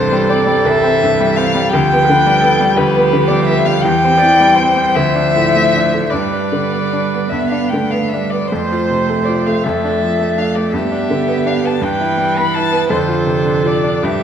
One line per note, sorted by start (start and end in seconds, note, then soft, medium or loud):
0.00 0.63 C2 medium
0.00 0.23 G2 medium
0.00 0.62 E3 medium
0.00 0.30 C4 medium
0.00 1.72 A4 medium
0.00 0.31 C5 medium
0.12 0.41 G3 medium
0.30 0.59 C4 soft
0.30 0.67 D5 medium
0.47 0.76 G3 soft
0.65 1.68 C2 medium
0.65 1.70 E3 medium
0.65 1.38 E5 medium
0.84 1.12 C4 soft
1.03 1.30 G2 soft
1.20 1.48 G3 medium
1.36 1.65 C4 medium
1.36 1.71 F5 medium
1.55 1.72 G3 medium
1.71 2.76 D2 medium
1.71 2.73 F3 medium
1.71 2.07 G4 medium
1.71 2.78 G5 loud
1.93 2.18 B3 medium
2.05 2.42 B4 medium
2.09 2.35 D3 medium
2.26 2.52 G3 medium
2.40 2.69 B3 medium
2.40 2.76 A4 medium
2.60 2.86 G3 medium
2.75 3.79 D2 medium
2.75 3.84 F3 medium
2.75 3.81 G4 medium
2.75 3.29 B4 medium
2.96 3.22 B3 medium
3.13 3.40 D3 medium
3.27 3.57 G3 medium
3.27 3.45 D5 medium
3.46 3.75 B3 soft
3.46 3.67 E5 medium
3.65 3.82 G3 medium
3.65 3.84 F5 medium
3.81 4.92 E2 medium
3.81 4.96 E3 medium
3.81 4.19 G4 medium
3.81 4.96 G5 loud
4.04 4.31 C4 medium
4.18 4.57 D5 medium
4.22 4.50 E3 soft
4.40 4.69 G3 soft
4.55 4.88 C4 soft
4.55 6.11 C5 medium
4.77 4.95 G3 soft
4.94 6.08 D2 medium
4.94 6.11 F3 medium
4.94 6.11 E5 loud
5.15 5.45 D4 soft
5.36 5.65 A2 soft
5.55 5.85 A3 soft
5.76 6.05 D4 soft
5.94 6.12 A3 soft
6.10 7.30 G2 soft
6.10 7.21 G3 medium
6.10 7.90 B4 medium
6.10 7.31 D5 medium
6.33 6.64 D4 soft
6.52 6.84 D3 soft
6.72 7.04 B3 soft
6.93 7.24 D4 soft
7.14 7.44 B3 soft
7.30 8.47 G2 soft
7.30 7.73 B3 medium
7.30 7.49 E5 medium
7.50 7.83 D4 soft
7.50 7.70 F5 medium
7.69 8.16 A3 medium
7.69 7.92 G5 medium
7.73 8.04 D3 soft
7.91 8.24 B3 soft
7.91 8.10 F5 medium
8.09 8.32 E5 medium
8.13 8.52 G3 soft
8.13 8.44 D4 soft
8.30 8.51 B3 soft
8.30 8.50 D5 medium
8.48 9.26 C5 medium
8.48 9.65 C5 medium
8.52 9.61 F2 soft
8.52 9.61 A3 soft
8.72 9.01 F4 soft
8.90 9.19 C3 soft
9.09 9.38 A3 soft
9.25 9.57 F4 soft
9.25 9.48 D5 medium
9.46 9.64 A3 soft
9.46 9.65 F5 medium
9.63 10.71 F2 medium
9.63 10.75 A3 soft
9.63 10.75 A4 medium
9.63 10.39 E5 medium
9.84 10.12 D4 soft
10.03 10.30 F3 soft
10.20 10.48 A3 soft
10.38 10.66 D4 soft
10.38 10.57 F5 medium
10.55 10.74 A3 soft
10.55 10.72 D5 medium
10.72 11.78 G2 soft
10.72 11.83 B3 soft
10.72 11.83 G4 medium
10.72 11.48 E5 medium
10.91 11.20 D4 soft
11.10 11.39 D3 soft
11.27 11.56 B3 soft
11.46 11.74 D4 soft
11.46 11.67 F5 medium
11.63 11.81 B3 soft
11.63 11.85 A5 medium
11.81 12.86 G2 medium
11.81 12.90 E3 medium
11.81 12.92 B4 medium
11.81 12.40 G5 medium
12.00 12.29 E4 soft
12.18 12.46 G3 soft
12.36 12.65 B3 soft
12.36 12.55 B5 medium
12.54 12.83 E4 soft
12.54 12.90 A5 medium
12.71 12.89 B3 soft
12.90 13.99 F2 medium
12.90 14.00 D3 medium
12.90 14.04 A4 medium
12.90 13.68 C5 medium
13.08 13.37 F4 soft
13.26 13.56 C3 soft
13.45 13.76 D4 soft
13.64 13.95 F4 soft
13.64 14.06 D5 medium
13.83 14.02 D4 soft
14.03 14.23 G2 medium
14.03 14.23 F3 medium
14.03 14.23 G4 medium
14.03 14.23 E5 medium